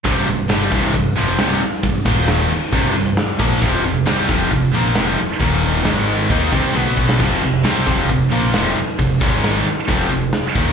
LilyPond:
<<
  \new Staff \with { instrumentName = "Distorted electric guitar" } { \clef bass \time 4/4 \key f \lydian \tempo 4 = 134 <c, g, c>8 <c, g,>8 <g, d g>8 <c, g, c>8 <c, g,>8 <f, c f>8 <c, g, c>8 r8 | <c, g,>8 <ees, bes, ees>4 r8 <c, g, c>8 <c, g,>8 r8 <bes, f bes>8 | <f, c f>8 <f, c>8 <c g c'>8 <f, c f>8 <f, c>8 <bes, f bes>8 <f, c f>8 r8 | <ees, bes, ees>4 <aes, ees aes>4 <ees bes ees'>8 <c g c'>8 <b, fis b>4 |
<f, c f>8 <f, c>8 <c g c'>8 <f, c f>8 <f, c>8 <bes, f bes>8 <f, c f>8 r8 | <f, c>8 <aes, ees aes>4 r8 <f, c f>8 <f, c>8 r8 <ees, bes, ees>8 | }
  \new Staff \with { instrumentName = "Distorted electric guitar" } { \clef bass \time 4/4 \key f \lydian <c, g, c>8 <c, g,>8 <g, d g>8 <c, g, c>8 <c, g,>8 <f, c f>8 <c, g, c>8 r8 | <c, g,>8 <ees, bes, ees>4 r8 <c, g, c>8 <c, g,>8 r8 <bes, f bes>8 | <f, c f>8 <f, c>8 <c g c'>8 <f, c f>8 <f, c>8 <bes, f bes>8 <f, c f>8 r8 | <ees, bes, ees>4 <aes, ees aes>4 <ees bes ees'>8 <c g c'>8 <b, fis b>4 |
<f, c f>8 <f, c>8 <c g c'>8 <f, c f>8 <f, c>8 <bes, f bes>8 <f, c f>8 r8 | <f, c>8 <aes, ees aes>4 r8 <f, c f>8 <f, c>8 r8 <ees, bes, ees>8 | }
  \new Staff \with { instrumentName = "Overdriven electric guitar" } { \clef bass \time 4/4 \key f \lydian <c, g, c>8 <c, g,>8 <g, d g>8 <c, g, c>8 <c, g,>8 <f, c f>8 <c, g, c>8 r8 | <c, g,>8 <ees, bes, ees>4 r8 <c, g, c>8 <c, g,>8 r8 <bes, f bes>8 | <f, c f>8 <f, c>8 <c g c'>8 <f, c f>8 <f, c>8 <bes, f bes>8 <f, c f>8 r8 | <ees, bes, ees>4 <aes, ees aes>4 <ees bes ees'>8 <c g c'>8 <b, fis b>4 |
<f, c f>8 <f, c>8 <c g c'>8 <f, c f>8 <f, c>8 <bes, f bes>8 <f, c f>8 r8 | <f, c>8 <aes, ees aes>4 r8 <f, c f>8 <f, c>8 r8 <ees, bes, ees>8 | }
  \new Staff \with { instrumentName = "Picked electric bass" } { \clef bass \time 4/4 \key f \lydian c,,8 c,,8 g,,8 c,,8 c,,8 f,,8 c,,8 r8 | c,,8 ees,,4 r8 c,,8 c,,8 r8 bes,,8 | f,,8 f,,8 c,8 f,,8 f,,8 bes,,8 f,,8 r8 | ees,,4 aes,,4 ees,8 c,8 b,,4 |
f,,8 f,,8 c,8 f,,8 f,,8 bes,,8 f,,8 r8 | f,,8 aes,,4 r8 f,,8 f,,8 r8 ees,,8 | }
  \new DrumStaff \with { instrumentName = "Drums" } \drummode { \time 4/4 <hho bd>16 sn8. <hho sn>8 bd8 <hho bd>4 <hho sn>4 | <hho bd>8 bd8 <hho sn>8 cymc8 bd4 <hho sn>8 bd16 sn16 | <hho bd>4 <hho sn>8 bd8 <hho bd>4 <hho sn>8. sn16 | <hho bd>16 sn8. <hho sn>4 <hho bd>8 bd8 tommh8 bd16 sn16 |
<cymc hho bd>4 <hho sn>8 bd8 <hho bd>4 <hho sn>4 | <hho bd>8 bd8 <hho sn>4 <hho bd>4 <hho sn>8 bd16 sn16 | }
>>